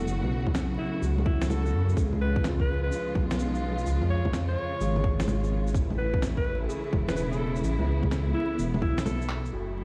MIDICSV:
0, 0, Header, 1, 7, 480
1, 0, Start_track
1, 0, Tempo, 472441
1, 79, Time_signature, 4, 2, 24, 8
1, 9998, End_track
2, 0, Start_track
2, 0, Title_t, "Alto saxophone"
2, 0, Program_c, 0, 65
2, 795, Note_on_c, 0, 64, 89
2, 1053, Note_off_c, 0, 64, 0
2, 1273, Note_on_c, 0, 64, 89
2, 1500, Note_off_c, 0, 64, 0
2, 1513, Note_on_c, 0, 69, 91
2, 1996, Note_off_c, 0, 69, 0
2, 2248, Note_on_c, 0, 71, 94
2, 2499, Note_off_c, 0, 71, 0
2, 2649, Note_on_c, 0, 71, 90
2, 2851, Note_off_c, 0, 71, 0
2, 2880, Note_on_c, 0, 71, 94
2, 3201, Note_off_c, 0, 71, 0
2, 4166, Note_on_c, 0, 73, 91
2, 4418, Note_off_c, 0, 73, 0
2, 4558, Note_on_c, 0, 73, 98
2, 5214, Note_off_c, 0, 73, 0
2, 6078, Note_on_c, 0, 71, 93
2, 6334, Note_off_c, 0, 71, 0
2, 6478, Note_on_c, 0, 71, 93
2, 6686, Note_off_c, 0, 71, 0
2, 7199, Note_on_c, 0, 71, 89
2, 7250, Note_off_c, 0, 71, 0
2, 7277, Note_on_c, 0, 71, 76
2, 7379, Note_off_c, 0, 71, 0
2, 7429, Note_on_c, 0, 69, 89
2, 7681, Note_off_c, 0, 69, 0
2, 8470, Note_on_c, 0, 64, 97
2, 8730, Note_off_c, 0, 64, 0
2, 8953, Note_on_c, 0, 64, 98
2, 9180, Note_off_c, 0, 64, 0
2, 9199, Note_on_c, 0, 69, 98
2, 9679, Note_off_c, 0, 69, 0
2, 9998, End_track
3, 0, Start_track
3, 0, Title_t, "Tine electric piano"
3, 0, Program_c, 1, 4
3, 0, Control_c, 1, 64, 127
3, 0, Note_on_c, 1, 59, 53
3, 0, Note_on_c, 1, 64, 53
3, 0, Note_on_c, 1, 69, 79
3, 355, Note_off_c, 1, 64, 0
3, 550, Note_on_c, 1, 61, 72
3, 1030, Note_on_c, 1, 66, 57
3, 1314, Note_off_c, 1, 61, 0
3, 1794, Note_off_c, 1, 66, 0
3, 1997, Note_on_c, 1, 68, 59
3, 2013, Control_c, 1, 64, 0
3, 2017, Note_off_c, 1, 69, 0
3, 2019, Note_off_c, 1, 59, 0
3, 2169, Control_c, 1, 64, 127
3, 2476, Note_on_c, 1, 65, 83
3, 2757, Note_off_c, 1, 68, 0
3, 2958, Note_on_c, 1, 61, 58
3, 3237, Note_off_c, 1, 65, 0
3, 3718, Note_off_c, 1, 61, 0
3, 3926, Note_on_c, 1, 65, 62
3, 4682, Note_off_c, 1, 65, 0
3, 4887, Note_on_c, 1, 68, 67
3, 5642, Note_off_c, 1, 68, 0
3, 5843, Note_on_c, 1, 64, 57
3, 5851, Control_c, 1, 64, 0
3, 6008, Control_c, 1, 64, 127
3, 6600, Note_off_c, 1, 64, 0
3, 6796, Note_on_c, 1, 68, 76
3, 7557, Note_off_c, 1, 68, 0
3, 8237, Note_on_c, 1, 69, 61
3, 8997, Note_off_c, 1, 69, 0
3, 9681, Note_on_c, 1, 66, 58
3, 9694, Control_c, 1, 64, 0
3, 9874, Control_c, 1, 64, 127
3, 9998, Note_off_c, 1, 66, 0
3, 9998, End_track
4, 0, Start_track
4, 0, Title_t, "Synth texture"
4, 0, Program_c, 2, 99
4, 9676, Note_on_c, 2, 69, 77
4, 9677, Note_on_c, 2, 57, 80
4, 9998, Note_off_c, 2, 57, 0
4, 9998, Note_off_c, 2, 69, 0
4, 9998, End_track
5, 0, Start_track
5, 0, Title_t, "String section"
5, 0, Program_c, 3, 48
5, 0, Note_on_c, 3, 49, 77
5, 0, Note_on_c, 3, 54, 72
5, 0, Note_on_c, 3, 57, 76
5, 0, Note_on_c, 3, 66, 87
5, 1956, Note_off_c, 3, 54, 0
5, 1957, Note_off_c, 3, 57, 0
5, 1962, Note_off_c, 3, 66, 0
5, 1994, Note_on_c, 3, 56, 72
5, 1995, Note_on_c, 3, 53, 72
5, 1995, Note_on_c, 3, 65, 89
5, 5797, Note_off_c, 3, 49, 0
5, 5798, Note_off_c, 3, 53, 0
5, 5798, Note_off_c, 3, 56, 0
5, 5798, Note_off_c, 3, 65, 0
5, 5828, Note_on_c, 3, 52, 76
5, 5828, Note_on_c, 3, 64, 89
5, 5829, Note_on_c, 3, 57, 76
5, 5831, Note_on_c, 3, 49, 82
5, 7735, Note_off_c, 3, 57, 0
5, 7761, Note_on_c, 3, 59, 77
5, 9635, Note_off_c, 3, 52, 0
5, 9635, Note_off_c, 3, 64, 0
5, 9637, Note_off_c, 3, 49, 0
5, 9661, Note_off_c, 3, 59, 0
5, 9675, Note_on_c, 3, 54, 64
5, 9676, Note_on_c, 3, 49, 72
5, 9679, Note_on_c, 3, 64, 75
5, 9680, Note_on_c, 3, 57, 66
5, 9998, Note_off_c, 3, 49, 0
5, 9998, Note_off_c, 3, 54, 0
5, 9998, Note_off_c, 3, 57, 0
5, 9998, Note_off_c, 3, 64, 0
5, 9998, End_track
6, 0, Start_track
6, 0, Title_t, "Detuned saw bass"
6, 0, Program_c, 4, 39
6, 75, Note_on_c, 4, 30, 102
6, 222, Note_off_c, 4, 30, 0
6, 236, Note_on_c, 4, 35, 92
6, 788, Note_off_c, 4, 35, 0
6, 1038, Note_on_c, 4, 37, 90
6, 1759, Note_on_c, 4, 42, 94
6, 1774, Note_off_c, 4, 37, 0
6, 1986, Note_off_c, 4, 42, 0
6, 2002, Note_on_c, 4, 37, 99
6, 2950, Note_off_c, 4, 37, 0
6, 3202, Note_on_c, 4, 35, 84
6, 3910, Note_off_c, 4, 35, 0
6, 3924, Note_on_c, 4, 37, 106
6, 4067, Note_off_c, 4, 37, 0
6, 4081, Note_on_c, 4, 41, 94
6, 4630, Note_off_c, 4, 41, 0
6, 4881, Note_on_c, 4, 32, 90
6, 5829, Note_off_c, 4, 32, 0
6, 5838, Note_on_c, 4, 33, 105
6, 6788, Note_off_c, 4, 33, 0
6, 7037, Note_on_c, 4, 28, 81
6, 7748, Note_off_c, 4, 28, 0
6, 7758, Note_on_c, 4, 33, 102
6, 7904, Note_off_c, 4, 33, 0
6, 7918, Note_on_c, 4, 37, 96
6, 8469, Note_off_c, 4, 37, 0
6, 8721, Note_on_c, 4, 28, 89
6, 8961, Note_on_c, 4, 35, 95
6, 8976, Note_off_c, 4, 28, 0
6, 9669, Note_off_c, 4, 35, 0
6, 9680, Note_on_c, 4, 30, 84
6, 9998, Note_off_c, 4, 30, 0
6, 9998, End_track
7, 0, Start_track
7, 0, Title_t, "Drums"
7, 75, Note_on_c, 9, 82, 52
7, 176, Note_off_c, 9, 82, 0
7, 235, Note_on_c, 9, 61, 35
7, 336, Note_off_c, 9, 61, 0
7, 473, Note_on_c, 9, 36, 63
7, 474, Note_on_c, 9, 61, 54
7, 557, Note_on_c, 9, 38, 103
7, 557, Note_on_c, 9, 82, 52
7, 575, Note_off_c, 9, 36, 0
7, 576, Note_off_c, 9, 61, 0
7, 658, Note_off_c, 9, 38, 0
7, 658, Note_off_c, 9, 82, 0
7, 1041, Note_on_c, 9, 82, 56
7, 1143, Note_off_c, 9, 82, 0
7, 1201, Note_on_c, 9, 61, 50
7, 1277, Note_on_c, 9, 36, 110
7, 1303, Note_off_c, 9, 61, 0
7, 1379, Note_off_c, 9, 36, 0
7, 1437, Note_on_c, 9, 38, 103
7, 1437, Note_on_c, 9, 82, 51
7, 1523, Note_off_c, 9, 82, 0
7, 1523, Note_on_c, 9, 61, 61
7, 1523, Note_on_c, 9, 82, 56
7, 1539, Note_off_c, 9, 38, 0
7, 1625, Note_off_c, 9, 61, 0
7, 1625, Note_off_c, 9, 82, 0
7, 1682, Note_on_c, 9, 82, 32
7, 1783, Note_off_c, 9, 82, 0
7, 1920, Note_on_c, 9, 82, 29
7, 2000, Note_on_c, 9, 36, 117
7, 2003, Note_off_c, 9, 82, 0
7, 2003, Note_on_c, 9, 82, 50
7, 2101, Note_off_c, 9, 36, 0
7, 2105, Note_off_c, 9, 82, 0
7, 2163, Note_on_c, 9, 61, 35
7, 2265, Note_off_c, 9, 61, 0
7, 2399, Note_on_c, 9, 36, 105
7, 2482, Note_on_c, 9, 38, 105
7, 2482, Note_on_c, 9, 82, 52
7, 2500, Note_off_c, 9, 36, 0
7, 2584, Note_off_c, 9, 38, 0
7, 2584, Note_off_c, 9, 82, 0
7, 2639, Note_on_c, 9, 36, 60
7, 2741, Note_off_c, 9, 36, 0
7, 2964, Note_on_c, 9, 82, 51
7, 3066, Note_off_c, 9, 82, 0
7, 3202, Note_on_c, 9, 36, 102
7, 3204, Note_on_c, 9, 61, 52
7, 3304, Note_off_c, 9, 36, 0
7, 3306, Note_off_c, 9, 61, 0
7, 3362, Note_on_c, 9, 38, 100
7, 3362, Note_on_c, 9, 82, 50
7, 3444, Note_off_c, 9, 82, 0
7, 3444, Note_on_c, 9, 82, 53
7, 3463, Note_off_c, 9, 38, 0
7, 3546, Note_off_c, 9, 82, 0
7, 3603, Note_on_c, 9, 82, 30
7, 3705, Note_off_c, 9, 82, 0
7, 3841, Note_on_c, 9, 82, 28
7, 3923, Note_off_c, 9, 82, 0
7, 3923, Note_on_c, 9, 82, 50
7, 4024, Note_off_c, 9, 82, 0
7, 4082, Note_on_c, 9, 61, 36
7, 4183, Note_off_c, 9, 61, 0
7, 4319, Note_on_c, 9, 36, 60
7, 4320, Note_on_c, 9, 61, 57
7, 4404, Note_on_c, 9, 38, 95
7, 4404, Note_on_c, 9, 82, 51
7, 4421, Note_off_c, 9, 36, 0
7, 4422, Note_off_c, 9, 61, 0
7, 4506, Note_off_c, 9, 38, 0
7, 4506, Note_off_c, 9, 82, 0
7, 4882, Note_on_c, 9, 82, 52
7, 4984, Note_off_c, 9, 82, 0
7, 5039, Note_on_c, 9, 61, 50
7, 5119, Note_on_c, 9, 36, 101
7, 5140, Note_off_c, 9, 61, 0
7, 5220, Note_off_c, 9, 36, 0
7, 5280, Note_on_c, 9, 38, 96
7, 5280, Note_on_c, 9, 82, 51
7, 5361, Note_off_c, 9, 82, 0
7, 5361, Note_on_c, 9, 61, 65
7, 5361, Note_on_c, 9, 82, 51
7, 5382, Note_off_c, 9, 38, 0
7, 5463, Note_off_c, 9, 61, 0
7, 5463, Note_off_c, 9, 82, 0
7, 5522, Note_on_c, 9, 82, 30
7, 5623, Note_off_c, 9, 82, 0
7, 5761, Note_on_c, 9, 82, 29
7, 5837, Note_on_c, 9, 36, 116
7, 5841, Note_off_c, 9, 82, 0
7, 5841, Note_on_c, 9, 82, 52
7, 5938, Note_off_c, 9, 36, 0
7, 5943, Note_off_c, 9, 82, 0
7, 5999, Note_on_c, 9, 61, 37
7, 6100, Note_off_c, 9, 61, 0
7, 6235, Note_on_c, 9, 36, 97
7, 6323, Note_on_c, 9, 38, 101
7, 6323, Note_on_c, 9, 82, 53
7, 6337, Note_off_c, 9, 36, 0
7, 6424, Note_off_c, 9, 38, 0
7, 6424, Note_off_c, 9, 82, 0
7, 6475, Note_on_c, 9, 36, 59
7, 6576, Note_off_c, 9, 36, 0
7, 6802, Note_on_c, 9, 82, 53
7, 6904, Note_off_c, 9, 82, 0
7, 7037, Note_on_c, 9, 36, 98
7, 7044, Note_on_c, 9, 61, 55
7, 7138, Note_off_c, 9, 36, 0
7, 7146, Note_off_c, 9, 61, 0
7, 7198, Note_on_c, 9, 38, 98
7, 7198, Note_on_c, 9, 82, 53
7, 7279, Note_off_c, 9, 82, 0
7, 7279, Note_on_c, 9, 82, 54
7, 7300, Note_off_c, 9, 38, 0
7, 7381, Note_off_c, 9, 82, 0
7, 7439, Note_on_c, 9, 82, 32
7, 7541, Note_off_c, 9, 82, 0
7, 7677, Note_on_c, 9, 82, 30
7, 7760, Note_off_c, 9, 82, 0
7, 7760, Note_on_c, 9, 82, 56
7, 7862, Note_off_c, 9, 82, 0
7, 7916, Note_on_c, 9, 61, 38
7, 8017, Note_off_c, 9, 61, 0
7, 8156, Note_on_c, 9, 36, 58
7, 8162, Note_on_c, 9, 61, 62
7, 8243, Note_on_c, 9, 38, 97
7, 8243, Note_on_c, 9, 82, 54
7, 8258, Note_off_c, 9, 36, 0
7, 8263, Note_off_c, 9, 61, 0
7, 8345, Note_off_c, 9, 38, 0
7, 8345, Note_off_c, 9, 82, 0
7, 8724, Note_on_c, 9, 82, 56
7, 8826, Note_off_c, 9, 82, 0
7, 8882, Note_on_c, 9, 61, 55
7, 8959, Note_on_c, 9, 36, 97
7, 8983, Note_off_c, 9, 61, 0
7, 9061, Note_off_c, 9, 36, 0
7, 9123, Note_on_c, 9, 38, 99
7, 9123, Note_on_c, 9, 82, 55
7, 9202, Note_off_c, 9, 82, 0
7, 9202, Note_on_c, 9, 61, 70
7, 9202, Note_on_c, 9, 82, 55
7, 9225, Note_off_c, 9, 38, 0
7, 9304, Note_off_c, 9, 61, 0
7, 9304, Note_off_c, 9, 82, 0
7, 9362, Note_on_c, 9, 82, 32
7, 9442, Note_on_c, 9, 39, 92
7, 9464, Note_off_c, 9, 82, 0
7, 9543, Note_off_c, 9, 39, 0
7, 9604, Note_on_c, 9, 82, 31
7, 9681, Note_on_c, 9, 49, 72
7, 9706, Note_off_c, 9, 82, 0
7, 9782, Note_off_c, 9, 49, 0
7, 9998, End_track
0, 0, End_of_file